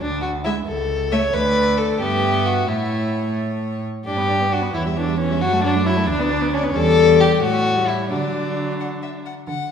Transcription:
0.01 cello D2, violin D4
0.22 violin F#4
0.44 viola G#3, violin E4 E5
0.67 cello C#2, violin A4
1.12 viola A3, violin C#5 E5
1.34 cello D2, viola A3, violin B4 D5
1.78 violin A4
2.00 cello G2, viola B3, violin G4 E5
2.46 violin F#4
2.69 cello A2, viola A3, violin E4 C#5
4.06 cello G2, viola D4, violin G4 D5
4.17 viola B3, violin B4
4.28 viola D4, violin D5
4.40 viola B3, violin B4
4.51 viola D4, violin F#4 D5
4.62 viola B3, violin B4
4.74 cello E2, viola E3, violin E4 C#5
4.86 viola G3, violin E5
4.96 viola E3, violin D4 C#5
5.08 viola G3, violin E5
5.19 viola E3, violin C#4 C#5
5.31 viola G3, violin E5
5.41 cello F#2, viola F#3, violin F#4 C#5
5.53 viola A3, violin A4
5.64 viola F#3, violin D4 C#5
5.75 viola A3, violin A4
5.86 viola F#3, violin E4 C#5
5.97 viola A3, violin A4
6.08 cello D2, viola D4, violin D4 D5
6.19 viola B3, violin B4
6.30 viola D4, violin D5
6.41 viola B3, violin B4
6.53 violin C#4 D5, viola D4
6.63 viola B3, violin B4
6.75 cello E2, viola G3, violin A4 D5
7.20 violin G4
7.42 cello A2, viola A3, violin F#4 C#5
7.76 viola G3
7.88 violin E4
8.10 cello D3, viola F#3, violin D4 D5
8.80 violin F#5
9.03 violin E5
9.26 violin F#5
9.48 cello D3, violin F#5

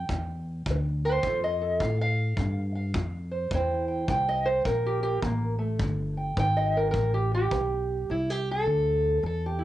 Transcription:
Already playing: steel-string acoustic guitar G5
0.09 upright bass E2, steel-string acoustic guitar D3, kick
0.66 upright bass D2, kick
0.71 steel-string acoustic guitar B4
1.05 steel-string acoustic guitar C5 G5
1.23 upright bass F2, steel-string acoustic guitar F3 F4, kick
1.28 steel-string acoustic guitar A4
1.44 steel-string acoustic guitar D#5
1.61 steel-string acoustic guitar A4
1.80 upright bass A2, steel-string acoustic guitar F4 F5, kick
2.01 steel-string acoustic guitar F5
2.37 upright bass G2, steel-string acoustic guitar C4, kick
2.75 steel-string acoustic guitar F5
2.94 upright bass F2, steel-string acoustic guitar F4, kick
3.31 steel-string acoustic guitar C5
3.51 upright bass E2, steel-string acoustic guitar C4 E4 C5 G5, kick
3.88 steel-string acoustic guitar G5
4.08 upright bass C2, steel-string acoustic guitar E4 G5, kick
4.29 steel-string acoustic guitar D#5
4.46 steel-string acoustic guitar C5
4.65 upright bass A#1, steel-string acoustic guitar G3 A#4, kick
4.86 steel-string acoustic guitar G4
5.03 steel-string acoustic guitar G4
5.22 upright bass A1, steel-string acoustic guitar A#3, kick
5.59 steel-string acoustic guitar A3
5.79 upright bass G1, steel-string acoustic guitar G3, kick
6.17 steel-string acoustic guitar G5
6.37 upright bass G#1, steel-string acoustic guitar B4 G5, kick
6.57 steel-string acoustic guitar D#5
6.77 steel-string acoustic guitar A#4
6.91 upright bass A1, steel-string acoustic guitar A#4, kick
6.97 steel-string acoustic guitar D3
7.14 steel-string acoustic guitar G4
7.34 steel-string acoustic guitar G4
7.51 upright bass B1, steel-string acoustic guitar B4, kick
8.10 upright bass C2, steel-string acoustic guitar C3 E4
8.30 steel-string acoustic guitar G4
8.51 steel-string acoustic guitar A4
8.66 upright bass D2, steel-string acoustic guitar G3
9.23 upright bass E2, steel-string acoustic guitar G3 A4
9.46 steel-string acoustic guitar G4
9.59 steel-string acoustic guitar E4

